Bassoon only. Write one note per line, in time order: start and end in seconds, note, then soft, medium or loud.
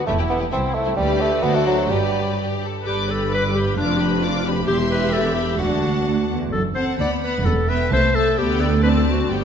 0.07 0.17 A3 medium
0.30 0.40 B3 medium
0.53 0.76 C4 medium
0.75 0.96 A3 medium
0.97 1.22 G3 medium
1.21 1.45 A3 medium
1.43 1.57 B3 medium
1.55 1.66 A3 medium
1.67 1.93 F#3 medium
1.91 2.39 G3 medium